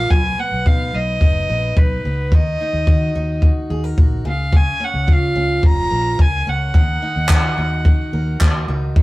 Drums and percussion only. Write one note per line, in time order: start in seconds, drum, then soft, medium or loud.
0.10 kick medium
0.66 kick medium
1.21 kick medium
1.77 kick loud
2.32 kick loud
2.87 kick medium
3.42 kick medium
3.98 kick loud
4.53 kick loud
5.08 kick loud
5.63 kick medium
6.19 kick loud
6.74 kick loud
7.29 kick loud
7.29 clap loud
7.85 kick loud
8.41 kick loud
8.41 clap loud
8.96 kick loud